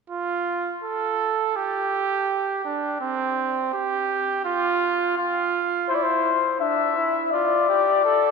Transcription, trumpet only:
0.10 0.79 F4 medium
0.84 1.58 A4 medium
1.56 2.64 G4 medium
2.65 3.00 D4 medium
3.01 3.71 C4 medium
3.74 4.44 G4 medium
4.45 5.15 F4 medium
5.18 5.92 F4 medium
5.90 6.36 E4 medium
6.61 6.98 D4 medium
6.96 7.33 E4 medium
7.33 7.68 F4 medium
7.69 8.04 G4 medium
8.05 8.31 A4 medium

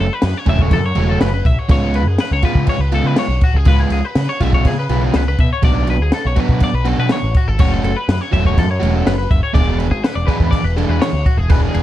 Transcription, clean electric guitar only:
0.00 0.13 A4 medium
0.13 0.38 B4 medium
0.38 0.49 C#5 medium
0.49 0.62 E5 medium
0.62 0.73 C#5 medium
0.73 0.85 A4 medium
0.86 1.10 C#5 medium
1.10 1.21 A4 medium
1.21 1.33 B4 medium
1.34 1.46 B4 medium
1.46 1.59 E5 medium
1.59 1.70 C#5 medium
1.71 1.96 C#5 loud
1.96 2.07 B4 medium
2.07 2.20 G#4 medium
2.20 2.32 B4 medium
2.33 2.44 C#5 medium
2.45 2.69 B4 medium
2.69 2.81 C#5 medium
2.81 2.93 B4 medium
2.94 3.06 A4 medium
3.06 3.18 B4 medium
3.19 3.43 C#5 medium
3.44 3.57 F#4 medium
3.57 3.68 G#4 medium
3.68 3.80 B4 loud
3.80 3.91 G#4 medium
3.92 4.05 G#4 medium
4.05 4.29 B4 medium
4.29 4.42 C#5 medium
4.42 4.54 E5 medium
4.54 4.66 C#5 medium
4.67 4.79 G#4 medium
4.79 5.04 B4 medium
5.04 5.16 G#4 medium
5.16 5.27 B4 medium
5.28 5.40 B4 medium
5.40 5.52 E5 medium
5.53 5.64 C#5 medium
5.64 5.89 D5 loud
5.90 6.01 B4 medium
6.02 6.13 G#4 medium
6.14 6.26 A4 medium
6.27 6.40 C#5 medium
6.40 6.63 B4 medium
6.64 6.75 D5 medium
6.75 6.88 B4 medium
6.88 6.99 A4 medium
7.00 7.11 B4 medium
7.12 7.36 C#5 medium
7.37 7.48 F#4 medium
7.48 7.60 A4 medium
7.60 7.72 C#5 loud
7.72 7.83 A4 medium
7.84 7.97 A4 medium
7.96 8.21 B4 medium
8.21 8.32 C#5 medium
8.33 8.45 E5 medium
8.47 8.58 C#5 medium
8.59 8.70 A4 medium
8.71 8.95 C#5 medium
8.95 9.07 A4 medium
9.07 9.17 B4 medium
9.18 9.31 B4 medium
9.31 9.43 E5 medium
9.43 9.54 C#5 medium
9.54 9.78 D5 loud
9.78 9.91 B4 medium
9.91 10.04 G#4 medium
10.04 10.16 B4 medium
10.16 10.28 D5 medium
10.27 10.52 B4 medium
10.51 10.64 D5 medium
10.64 10.77 B4 medium
10.77 10.89 A4 medium
10.89 11.01 B4 medium
11.02 11.26 C#5 medium
11.26 11.38 F#4 medium
11.38 11.50 G#4 medium
11.50 11.62 B4 loud
11.62 11.73 G#4 medium
11.74 11.83 G#4 medium

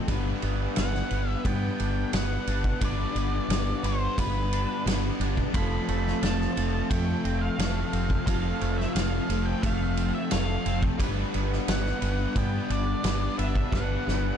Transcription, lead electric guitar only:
0.78 1.31 F#5 medium
1.31 1.47 E5 medium
1.47 2.15 G5 loud
2.16 2.85 F#5 medium
2.85 3.89 D5 loud
3.86 4.20 C5 medium
4.20 4.84 B4 medium
5.55 6.26 B5 loud
6.23 6.90 A5 medium
6.90 7.44 G5 medium
7.41 8.25 F5 medium
8.27 8.77 F5 medium
8.78 8.94 E5 medium
8.95 9.48 F5 medium
9.46 9.64 G5 medium
9.62 10.14 F5 medium
10.15 10.31 E5 medium
10.31 10.83 F5 medium
11.70 12.38 F#5 medium
12.38 12.72 G5 loud
12.72 13.38 D5 loud
13.39 13.74 E5 medium
13.74 14.37 F#5 medium

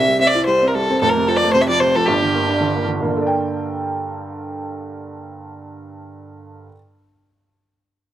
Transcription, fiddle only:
0.00 0.20 E5 loud
0.21 0.29 E5 loud
0.27 0.45 D5 loud
0.46 0.69 C5 loud
0.68 0.76 A#4 medium
0.74 1.00 A4 loud
1.01 1.11 A4 loud
1.09 1.30 A#4 loud
1.28 1.38 A4 medium
1.36 1.53 D5 loud
1.53 1.63 C5 medium
1.62 1.68 E5 medium
1.69 1.82 D5 loud
1.80 1.97 C5 loud
1.96 2.08 A4 medium
2.07 2.86 G4 medium

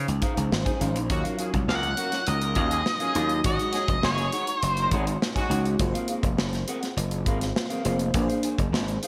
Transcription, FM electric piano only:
0.00 0.81 F3 medium
0.00 0.81 C#4 medium
0.00 0.82 D#4 medium
0.00 0.82 C5 medium
0.81 1.01 F3 medium
0.81 1.01 C#4 medium
0.81 1.01 D#4 medium
0.81 1.01 C5 medium
1.10 1.88 F#3 medium
1.10 1.88 D#4 medium
1.10 1.88 F4 medium
1.10 1.89 C#5 medium
3.15 3.34 F#3 medium
3.15 3.35 D#4 medium
3.15 3.35 F4 medium
3.15 3.35 C#5 medium
3.43 4.22 G#3 medium
3.43 4.22 D#4 medium
3.43 4.22 F#4 medium
3.43 4.23 C#5 medium
5.50 5.69 G#3 medium
5.50 5.69 D#4 medium
5.50 5.70 F#4 medium
5.50 5.70 C#5 medium
5.80 6.57 A#3 medium
5.80 6.58 F4 medium
5.80 6.58 G#4 medium
5.80 6.58 C5 medium
7.84 8.04 A#3 medium
7.84 8.05 F4 medium
7.84 8.05 G#4 medium
7.84 8.05 C5 medium
8.14 8.92 A#3 medium
8.14 8.93 D4 medium
8.14 8.93 G#4 medium
8.14 8.22 B4 medium
8.22 8.96 C5 medium

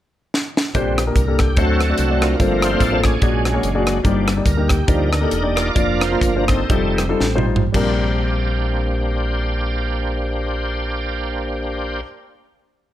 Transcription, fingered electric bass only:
0.75 1.10 A#1 medium
1.16 1.57 C2 medium
1.57 1.92 D2 medium
1.99 2.34 C2 medium
2.40 2.75 G1 medium
2.80 3.16 A1 medium
3.22 3.57 A#1 medium
3.63 3.98 F#1 medium
4.04 4.40 G1 medium
4.46 4.82 D2 medium
4.88 5.25 D2 medium
5.31 5.69 E1 medium
5.76 6.15 F1 medium
6.22 6.63 G1 medium
6.70 7.13 F1 medium
7.21 7.66 A1 medium
7.75 12.01 A#1 medium

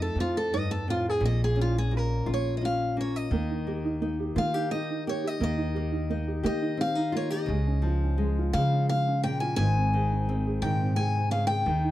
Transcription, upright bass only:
0.00 0.12 F2 loud
0.15 1.17 F2 medium
1.21 2.22 A#1 loud
2.27 3.27 A#1 medium
3.31 4.31 D#2 medium
4.36 5.36 D#3 loud
5.40 6.41 D#2 loud
6.44 7.45 D#3 loud
7.48 8.49 C#2 medium
8.54 9.54 C#3 loud
9.57 10.58 G#1 loud
10.62 11.62 G#2 loud
11.66 11.91 D#2 medium

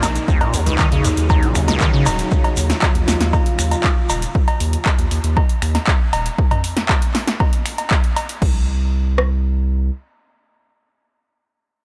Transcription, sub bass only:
0.03 0.19 A#1 medium
0.54 0.69 D#2 loud
0.92 1.00 D#2 medium
1.04 1.12 D#2 loud
1.17 1.33 D#2 loud
1.55 1.71 D#2 medium
2.06 2.22 D#1 medium
2.57 2.73 D#2 loud
2.95 3.03 D#2 medium
3.08 3.16 D#2 loud
3.21 3.36 D#2 loud
3.59 3.75 D#2 loud
4.10 4.25 D#1 medium
4.60 4.76 D#2 loud
4.99 5.06 D#2 medium
5.11 5.19 D#2 loud
5.24 5.40 D#2 medium
5.62 5.78 D#2 loud
6.13 6.29 D#1 medium
8.42 9.90 C2 loud

